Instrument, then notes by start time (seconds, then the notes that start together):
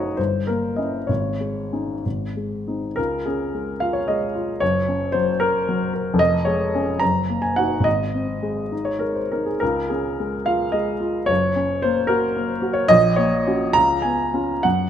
grand piano
Already playing: F#1 A3 D#4 F#4 C#5 D#5
0.17 G1 C5
0.47 A#3 A#4
0.76 C#4 E4 D#5
1.07 G#1 C#5
1.40 G#3
1.73 C#4 D#4
2.05 G#1
2.37 G#3
2.68 C4 D#4
2.96 C#2 A#4
3.26 C#4 G#4
3.54 G#3
3.80 F4 F5
3.93 C#5
4.08 G#3 D#5
4.35 F4
4.60 F#1 C#5
4.88 C#4
5.12 F#3 C5
5.40 A#4
5.69 F#3
5.94 A#4
6.14 F1
6.19 D#5
6.45 G#3 C#5
6.75 C#4 G#4
7.00 F#1 A#5
7.29 A#3
7.42 G#5
7.56 D#4 F#4 F#5
7.80 G#1
7.84 D#5
8.15 C4
8.43 G#3
8.72 D#4
8.85 C#5
8.99 G#3 A#4
9.15 C5
9.32 D#4 A#4
9.46 G#4
9.60 C#2 A#4
9.89 C#4 G#4
10.20 G#3
10.46 F4 F5
10.72 G#3 D#5
11.00 F4
11.26 F#1 C#5
11.56 C#4
11.82 A#3 C5
12.07 F#4 A#4
12.36 A#3
12.62 F#4
12.73 C#5
12.88 A#1 D#5
13.16 A#3 C#5
13.47 C#4 F#4
13.73 C#2 A#5
14.02 B3 G#5
14.34 C#4 F4
14.63 F#2 F#5